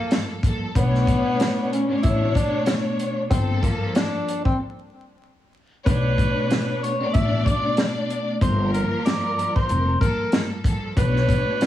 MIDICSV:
0, 0, Header, 1, 5, 480
1, 0, Start_track
1, 0, Tempo, 638298
1, 569, Time_signature, 4, 2, 24, 8
1, 8771, End_track
2, 0, Start_track
2, 0, Title_t, "Tenor saxophone"
2, 0, Program_c, 0, 66
2, 0, Note_on_c, 0, 58, 90
2, 201, Note_off_c, 0, 58, 0
2, 570, Note_on_c, 0, 59, 112
2, 1259, Note_off_c, 0, 59, 0
2, 1295, Note_on_c, 0, 61, 76
2, 1508, Note_off_c, 0, 61, 0
2, 1523, Note_on_c, 0, 64, 80
2, 1742, Note_off_c, 0, 64, 0
2, 1770, Note_on_c, 0, 62, 85
2, 1985, Note_off_c, 0, 62, 0
2, 2483, Note_on_c, 0, 60, 91
2, 2701, Note_off_c, 0, 60, 0
2, 2727, Note_on_c, 0, 58, 78
2, 2943, Note_off_c, 0, 58, 0
2, 2974, Note_on_c, 0, 62, 85
2, 3327, Note_off_c, 0, 62, 0
2, 3344, Note_on_c, 0, 60, 82
2, 3441, Note_off_c, 0, 60, 0
2, 4406, Note_on_c, 0, 71, 116
2, 5097, Note_off_c, 0, 71, 0
2, 5134, Note_on_c, 0, 73, 80
2, 5347, Note_off_c, 0, 73, 0
2, 5364, Note_on_c, 0, 76, 86
2, 5582, Note_off_c, 0, 76, 0
2, 5604, Note_on_c, 0, 74, 83
2, 5822, Note_off_c, 0, 74, 0
2, 6333, Note_on_c, 0, 72, 99
2, 6547, Note_off_c, 0, 72, 0
2, 6568, Note_on_c, 0, 70, 77
2, 6784, Note_off_c, 0, 70, 0
2, 6808, Note_on_c, 0, 74, 88
2, 7164, Note_off_c, 0, 74, 0
2, 7183, Note_on_c, 0, 72, 87
2, 7506, Note_off_c, 0, 72, 0
2, 7523, Note_on_c, 0, 70, 92
2, 7882, Note_off_c, 0, 70, 0
2, 8251, Note_on_c, 0, 71, 111
2, 8771, Note_off_c, 0, 71, 0
2, 8771, End_track
3, 0, Start_track
3, 0, Title_t, "String section"
3, 0, Program_c, 1, 48
3, 0, Note_on_c, 1, 58, 84
3, 0, Note_on_c, 1, 69, 115
3, 76, Note_off_c, 1, 58, 0
3, 79, Note_off_c, 1, 69, 0
3, 85, Note_on_c, 1, 43, 75
3, 92, Note_on_c, 1, 53, 69
3, 99, Note_on_c, 1, 58, 73
3, 105, Note_on_c, 1, 69, 87
3, 310, Note_off_c, 1, 43, 0
3, 314, Note_off_c, 1, 53, 0
3, 317, Note_off_c, 1, 58, 0
3, 318, Note_on_c, 1, 43, 85
3, 321, Note_off_c, 1, 69, 0
3, 325, Note_on_c, 1, 53, 70
3, 332, Note_on_c, 1, 58, 79
3, 338, Note_on_c, 1, 69, 99
3, 547, Note_off_c, 1, 43, 0
3, 551, Note_off_c, 1, 53, 0
3, 554, Note_off_c, 1, 58, 0
3, 556, Note_on_c, 1, 47, 96
3, 557, Note_off_c, 1, 69, 0
3, 562, Note_on_c, 1, 57, 98
3, 569, Note_on_c, 1, 62, 95
3, 576, Note_on_c, 1, 73, 120
3, 1343, Note_off_c, 1, 47, 0
3, 1346, Note_off_c, 1, 57, 0
3, 1350, Note_off_c, 1, 62, 0
3, 1353, Note_off_c, 1, 73, 0
3, 1417, Note_on_c, 1, 47, 96
3, 1423, Note_on_c, 1, 57, 99
3, 1430, Note_on_c, 1, 62, 97
3, 1436, Note_on_c, 1, 73, 119
3, 2410, Note_off_c, 1, 47, 0
3, 2413, Note_off_c, 1, 57, 0
3, 2417, Note_off_c, 1, 62, 0
3, 2420, Note_off_c, 1, 73, 0
3, 2478, Note_on_c, 1, 43, 103
3, 2485, Note_on_c, 1, 53, 109
3, 2492, Note_on_c, 1, 58, 92
3, 2499, Note_on_c, 1, 69, 115
3, 3443, Note_off_c, 1, 43, 0
3, 3447, Note_off_c, 1, 53, 0
3, 3450, Note_off_c, 1, 58, 0
3, 3453, Note_off_c, 1, 69, 0
3, 4396, Note_on_c, 1, 47, 99
3, 4402, Note_on_c, 1, 57, 98
3, 4409, Note_on_c, 1, 62, 103
3, 4415, Note_on_c, 1, 73, 118
3, 5183, Note_off_c, 1, 47, 0
3, 5186, Note_off_c, 1, 57, 0
3, 5190, Note_off_c, 1, 62, 0
3, 5193, Note_off_c, 1, 73, 0
3, 5257, Note_on_c, 1, 47, 99
3, 5264, Note_on_c, 1, 57, 97
3, 5271, Note_on_c, 1, 62, 102
3, 5278, Note_on_c, 1, 74, 123
3, 6250, Note_off_c, 1, 47, 0
3, 6254, Note_off_c, 1, 57, 0
3, 6257, Note_off_c, 1, 62, 0
3, 6261, Note_off_c, 1, 74, 0
3, 6319, Note_on_c, 1, 43, 108
3, 6326, Note_on_c, 1, 53, 113
3, 6332, Note_on_c, 1, 58, 98
3, 6339, Note_on_c, 1, 70, 120
3, 7443, Note_off_c, 1, 43, 0
3, 7446, Note_off_c, 1, 53, 0
3, 7449, Note_off_c, 1, 58, 0
3, 7453, Note_off_c, 1, 70, 0
3, 7521, Note_on_c, 1, 43, 97
3, 7528, Note_on_c, 1, 53, 86
3, 7534, Note_on_c, 1, 58, 87
3, 7541, Note_on_c, 1, 69, 115
3, 7749, Note_off_c, 1, 43, 0
3, 7752, Note_off_c, 1, 53, 0
3, 7755, Note_off_c, 1, 58, 0
3, 7758, Note_off_c, 1, 69, 0
3, 7765, Note_on_c, 1, 43, 77
3, 7772, Note_on_c, 1, 53, 70
3, 7779, Note_on_c, 1, 58, 74
3, 7785, Note_on_c, 1, 69, 87
3, 7988, Note_off_c, 1, 43, 0
3, 7994, Note_off_c, 1, 53, 0
3, 7997, Note_off_c, 1, 58, 0
3, 7997, Note_on_c, 1, 43, 86
3, 8000, Note_off_c, 1, 69, 0
3, 8004, Note_on_c, 1, 53, 72
3, 8011, Note_on_c, 1, 58, 75
3, 8017, Note_on_c, 1, 69, 96
3, 8227, Note_off_c, 1, 43, 0
3, 8230, Note_off_c, 1, 53, 0
3, 8233, Note_off_c, 1, 58, 0
3, 8236, Note_off_c, 1, 69, 0
3, 8237, Note_on_c, 1, 47, 102
3, 8243, Note_on_c, 1, 57, 96
3, 8250, Note_on_c, 1, 62, 100
3, 8257, Note_on_c, 1, 73, 122
3, 8771, Note_off_c, 1, 47, 0
3, 8771, Note_off_c, 1, 57, 0
3, 8771, Note_off_c, 1, 62, 0
3, 8771, Note_off_c, 1, 73, 0
3, 8771, End_track
4, 0, Start_track
4, 0, Title_t, "Upright bass"
4, 0, Program_c, 2, 32
4, 569, Note_on_c, 2, 35, 104
4, 860, Note_off_c, 2, 35, 0
4, 1536, Note_on_c, 2, 33, 104
4, 1718, Note_off_c, 2, 33, 0
4, 2490, Note_on_c, 2, 31, 106
4, 2781, Note_off_c, 2, 31, 0
4, 4411, Note_on_c, 2, 35, 107
4, 4701, Note_off_c, 2, 35, 0
4, 5377, Note_on_c, 2, 33, 101
4, 5559, Note_off_c, 2, 33, 0
4, 6330, Note_on_c, 2, 31, 114
4, 6621, Note_off_c, 2, 31, 0
4, 7292, Note_on_c, 2, 29, 100
4, 7475, Note_off_c, 2, 29, 0
4, 8249, Note_on_c, 2, 35, 108
4, 8540, Note_off_c, 2, 35, 0
4, 8771, End_track
5, 0, Start_track
5, 0, Title_t, "Drums"
5, 80, Note_on_c, 9, 42, 86
5, 88, Note_on_c, 9, 38, 104
5, 90, Note_on_c, 9, 40, 84
5, 155, Note_off_c, 9, 42, 0
5, 163, Note_off_c, 9, 38, 0
5, 165, Note_off_c, 9, 40, 0
5, 324, Note_on_c, 9, 36, 98
5, 331, Note_on_c, 9, 42, 73
5, 399, Note_off_c, 9, 36, 0
5, 406, Note_off_c, 9, 42, 0
5, 566, Note_on_c, 9, 36, 106
5, 570, Note_on_c, 9, 42, 97
5, 642, Note_off_c, 9, 36, 0
5, 645, Note_off_c, 9, 42, 0
5, 714, Note_on_c, 9, 38, 34
5, 789, Note_off_c, 9, 38, 0
5, 807, Note_on_c, 9, 36, 97
5, 813, Note_on_c, 9, 42, 73
5, 883, Note_off_c, 9, 36, 0
5, 888, Note_off_c, 9, 42, 0
5, 1050, Note_on_c, 9, 42, 90
5, 1060, Note_on_c, 9, 38, 109
5, 1062, Note_on_c, 9, 40, 87
5, 1125, Note_off_c, 9, 42, 0
5, 1135, Note_off_c, 9, 38, 0
5, 1137, Note_off_c, 9, 40, 0
5, 1300, Note_on_c, 9, 42, 74
5, 1375, Note_off_c, 9, 42, 0
5, 1527, Note_on_c, 9, 42, 69
5, 1534, Note_on_c, 9, 36, 99
5, 1602, Note_off_c, 9, 42, 0
5, 1609, Note_off_c, 9, 36, 0
5, 1769, Note_on_c, 9, 36, 101
5, 1778, Note_on_c, 9, 42, 80
5, 1844, Note_off_c, 9, 36, 0
5, 1853, Note_off_c, 9, 42, 0
5, 2001, Note_on_c, 9, 42, 84
5, 2009, Note_on_c, 9, 38, 107
5, 2011, Note_on_c, 9, 40, 85
5, 2076, Note_off_c, 9, 42, 0
5, 2084, Note_off_c, 9, 38, 0
5, 2086, Note_off_c, 9, 40, 0
5, 2252, Note_on_c, 9, 42, 75
5, 2327, Note_off_c, 9, 42, 0
5, 2487, Note_on_c, 9, 36, 110
5, 2490, Note_on_c, 9, 42, 99
5, 2562, Note_off_c, 9, 36, 0
5, 2565, Note_off_c, 9, 42, 0
5, 2728, Note_on_c, 9, 36, 100
5, 2734, Note_on_c, 9, 42, 75
5, 2803, Note_off_c, 9, 36, 0
5, 2809, Note_off_c, 9, 42, 0
5, 2969, Note_on_c, 9, 42, 90
5, 2979, Note_on_c, 9, 38, 112
5, 2981, Note_on_c, 9, 40, 86
5, 3044, Note_off_c, 9, 42, 0
5, 3054, Note_off_c, 9, 38, 0
5, 3056, Note_off_c, 9, 40, 0
5, 3220, Note_on_c, 9, 42, 75
5, 3296, Note_off_c, 9, 42, 0
5, 3349, Note_on_c, 9, 36, 85
5, 3424, Note_off_c, 9, 36, 0
5, 4408, Note_on_c, 9, 36, 108
5, 4412, Note_on_c, 9, 42, 102
5, 4483, Note_off_c, 9, 36, 0
5, 4487, Note_off_c, 9, 42, 0
5, 4649, Note_on_c, 9, 36, 100
5, 4655, Note_on_c, 9, 42, 75
5, 4724, Note_off_c, 9, 36, 0
5, 4730, Note_off_c, 9, 42, 0
5, 4891, Note_on_c, 9, 42, 93
5, 4901, Note_on_c, 9, 38, 113
5, 4902, Note_on_c, 9, 40, 91
5, 4966, Note_off_c, 9, 42, 0
5, 4976, Note_off_c, 9, 38, 0
5, 4978, Note_off_c, 9, 40, 0
5, 5142, Note_on_c, 9, 42, 77
5, 5217, Note_off_c, 9, 42, 0
5, 5368, Note_on_c, 9, 42, 70
5, 5375, Note_on_c, 9, 36, 103
5, 5443, Note_off_c, 9, 42, 0
5, 5450, Note_off_c, 9, 36, 0
5, 5610, Note_on_c, 9, 36, 102
5, 5619, Note_on_c, 9, 42, 79
5, 5685, Note_off_c, 9, 36, 0
5, 5695, Note_off_c, 9, 42, 0
5, 5842, Note_on_c, 9, 42, 86
5, 5850, Note_on_c, 9, 38, 107
5, 5852, Note_on_c, 9, 40, 90
5, 5918, Note_off_c, 9, 42, 0
5, 5926, Note_off_c, 9, 38, 0
5, 5927, Note_off_c, 9, 40, 0
5, 6093, Note_on_c, 9, 42, 75
5, 6168, Note_off_c, 9, 42, 0
5, 6327, Note_on_c, 9, 36, 112
5, 6331, Note_on_c, 9, 42, 99
5, 6402, Note_off_c, 9, 36, 0
5, 6406, Note_off_c, 9, 42, 0
5, 6574, Note_on_c, 9, 42, 77
5, 6649, Note_off_c, 9, 42, 0
5, 6810, Note_on_c, 9, 42, 91
5, 6820, Note_on_c, 9, 38, 112
5, 6822, Note_on_c, 9, 40, 88
5, 6885, Note_off_c, 9, 42, 0
5, 6895, Note_off_c, 9, 38, 0
5, 6897, Note_off_c, 9, 40, 0
5, 7060, Note_on_c, 9, 42, 76
5, 7136, Note_off_c, 9, 42, 0
5, 7188, Note_on_c, 9, 36, 87
5, 7263, Note_off_c, 9, 36, 0
5, 7287, Note_on_c, 9, 42, 71
5, 7362, Note_off_c, 9, 42, 0
5, 7528, Note_on_c, 9, 36, 105
5, 7538, Note_on_c, 9, 42, 80
5, 7604, Note_off_c, 9, 36, 0
5, 7613, Note_off_c, 9, 42, 0
5, 7761, Note_on_c, 9, 42, 85
5, 7769, Note_on_c, 9, 38, 116
5, 7771, Note_on_c, 9, 40, 89
5, 7836, Note_off_c, 9, 42, 0
5, 7844, Note_off_c, 9, 38, 0
5, 7846, Note_off_c, 9, 40, 0
5, 8004, Note_on_c, 9, 36, 98
5, 8011, Note_on_c, 9, 42, 77
5, 8079, Note_off_c, 9, 36, 0
5, 8086, Note_off_c, 9, 42, 0
5, 8247, Note_on_c, 9, 36, 109
5, 8250, Note_on_c, 9, 42, 98
5, 8322, Note_off_c, 9, 36, 0
5, 8325, Note_off_c, 9, 42, 0
5, 8394, Note_on_c, 9, 38, 36
5, 8470, Note_off_c, 9, 38, 0
5, 8488, Note_on_c, 9, 36, 100
5, 8494, Note_on_c, 9, 42, 74
5, 8563, Note_off_c, 9, 36, 0
5, 8569, Note_off_c, 9, 42, 0
5, 8729, Note_on_c, 9, 42, 94
5, 8739, Note_on_c, 9, 38, 114
5, 8741, Note_on_c, 9, 40, 91
5, 8771, Note_off_c, 9, 38, 0
5, 8771, Note_off_c, 9, 40, 0
5, 8771, Note_off_c, 9, 42, 0
5, 8771, End_track
0, 0, End_of_file